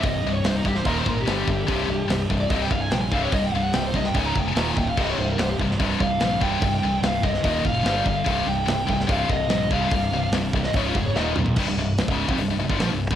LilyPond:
<<
  \new Staff \with { instrumentName = "Lead electric guitar" } { \time 4/4 \key c \phrygian \tempo 4 = 146 ees''8. des''16 c''16 ees'16 g'16 c''16 bes'16 c''16 bes'16 g'4~ g'16~ | g'4~ g'16 r8 d''16 ees''16 g''16 f''16 aes''16 g''16 aes''16 f''16 des''16 | ees''16 g''16 f''16 fis''16 g''16 c''16 ees''16 g''16 aes''16 bes''16 g''16 aes''16 bes''16 aes''16 g''16 f''16 | ees''16 des''16 c''16 bes'16 c''16 g'16 r4 f''4 g''8~ |
g''4 f''8 ees''4 f''4 f''8~ | f''8 g''4. f''8 ees''4 f''8~ | f''4 r8. ees''16 des''16 f'16 aes'16 des''16 ees''8 r8 | r1 | }
  \new Staff \with { instrumentName = "Distorted electric guitar" } { \clef bass \time 4/4 \key c \phrygian <c, g,>8 <c, g,>8 <c, g,>8 <c, g,>8 <ees, bes, ees>8 <ees, bes,>8 <g, d g>8 <g, d>8 | <c, g, c>8 <c, g,>8 <c, g,>8 <c, g,>8 <c, g, c>8 <c, g,>8 <c, g,>8 <c, g, c>8 | <c, g,>8 <c, g,>8 <c, g,>8 <c, g,>8 <des, aes, des>8 <des, aes,>8 <ees, bes, ees>8 <ees, bes,>8 | <c, g, c>8 <c, g,>8 <c, g,>8 <c, g,>8 <c, g, c>8 <c, g,>8 <c, g,>8 <c, g, c>8 |
<c, g,>8 <c, g,>8 <c, g,>8 <c, g,>8 <ees, bes, ees>8 <ees, bes,>8 <g, d g>8 <g, d>8 | <c, g, c>8 <c, g,>8 <c, g,>8 <c, g,>8 <c, g, c>8 <c, g,>8 <c, g,>8 <c, g, c>8 | <c, g,>8 <c, g,>8 <c, g,>8 <c, g,>8 <des, aes, des>8 <des, aes,>8 <ees, bes, ees>8 <ees, bes,>8 | <c, g,>16 <c, g,>16 <c, g,>8 <c, g,>16 <des, aes, des>8 <f, c>16 <c, g,>16 <c, g,>16 <c, g,>16 <g, d>16 <bes, f>16 <c, g,>8 g,16 | }
  \new Staff \with { instrumentName = "Distorted electric guitar" } { \clef bass \time 4/4 \key c \phrygian <c, g,>8 <c, g,>8 <c, g,>8 <c, g,>8 <ees, bes, ees>8 <ees, bes,>8 <g, d g>8 <g, d>8 | <c, g, c>8 <c, g,>8 <c, g,>8 <c, g,>8 <c, g, c>8 <c, g,>8 <c, g,>8 <c, g, c>8 | <c, g,>8 <c, g,>8 <c, g,>8 <c, g,>8 <des, aes, des>8 <des, aes,>8 <ees, bes, ees>8 <ees, bes,>8 | <c, g, c>8 <c, g,>8 <c, g,>8 <c, g,>8 <c, g, c>8 <c, g,>8 <c, g,>8 <c, g, c>8 |
<c, g,>8 <c, g,>8 <c, g,>8 <c, g,>8 <ees, bes, ees>8 <ees, bes,>8 <g, d g>8 <g, d>8 | <c, g, c>8 <c, g,>8 <c, g,>8 <c, g,>8 <c, g, c>8 <c, g,>8 <c, g,>8 <c, g, c>8 | <c, g,>8 <c, g,>8 <c, g,>8 <c, g,>8 <des, aes, des>8 <des, aes,>8 <ees, bes, ees>8 <ees, bes,>8 | <c, g,>16 <c, g,>16 <c, g,>8 <c, g,>16 <des, aes, des>8 <f, c>16 <c, g,>16 <c, g,>16 <c, g,>16 <g, d>16 <bes, f>16 <c, g,>8 <g, d>16 | }
  \new Staff \with { instrumentName = "Distorted electric guitar" } { \clef bass \time 4/4 \key c \phrygian <c, g, c>4. <c, g, c>8 <ees, bes, ees>4 <g, d g>4 | <c, g, c>4. <c, g, c>4. <c, g, c>4 | <c, g, c>4. <c, g, c>8 <des, aes, des>4 <ees, bes, ees>4 | <c, g, c>4. <c, g, c>4. <c, g, c>4 |
<c, g, c>4. <c, g, c>8 <ees, bes, ees>4 <g, d g>4 | <c, g, c>4. <c, g, c>4. <c, g, c>4 | <c, g, c>4. <c, g, c>8 <des, aes, des>4 <ees, bes, ees>4 | <c, g,>16 <c, g,>16 <c, g,>8 <c, g,>16 <des, aes, des>8 <f, c>16 <c, g,>16 <c, g,>16 <c, g,>16 <g, d>16 <bes, f>16 <c, g,>8 <g, d>16 | }
  \new Staff \with { instrumentName = "Fingered electric bass" } { \clef bass \time 4/4 \key c \phrygian c,,8 c,,8 c,,8 c,,8 ees,,8 aes,,8 g,,8 g,,8 | c,,8 c,,8 c,,8 c,,8 c,,8 c,,8 bes,,8 c,,8 | c,,8 c,,8 c,,8 c,,8 des,,8 f,,8 ees,,8 des,,8 | c,,8 c,,8 c,,8 c,,8 c,,8 c,,8 bes,,8 c,,8 |
c,,8 c,,8 c,,8 c,,8 ees,,8 fis,,8 g,,8 g,,8 | c,,8 c,,8 c,,8 c,,8 c,,8 c,,8 bes,,8 c,,8 | c,,8 c,,8 c,,8 c,,8 des,,8 f,,8 ees,,8 b,,8 | c,,16 c,,16 c,,8 c,,16 des,,8 f,,16 c,,16 c,,16 c,,16 g,,16 bes,,16 c,,8 g,,16 | }
  \new DrumStaff \with { instrumentName = "Drums" } \drummode { \time 4/4 <hho bd>4 <hho sn>8 bd16 sn16 <hho bd>8 bd8 <hho sn>8 bd8 | <hho bd>4 <hho sn>8 bd8 <hho bd>8 bd8 <hho sn>8 bd8 | <hho bd>4 <hho sn>8 bd16 sn16 <hho bd>8 bd8 <hho sn>8 bd8 | <cymc bd>4 <hho sn>8 bd16 sn16 <hho bd>8 bd8 <hho sn>8 bd8 |
<hho bd>4 <hho sn>8 bd16 sn16 <hho bd>8 bd8 <hho sn>8 bd8 | <hho bd>4 <hho sn>8 bd16 sn16 <hho bd>8 bd8 <hho sn>8 bd8 | <hho bd>4 <hho sn>8 bd16 sn16 <hho bd>8 bd8 sn8 toml16 tomfh16 | <cymc bd>4 <hho sn>16 bd8 bd16 hho8. bd16 <hho sn>8. bd16 | }
>>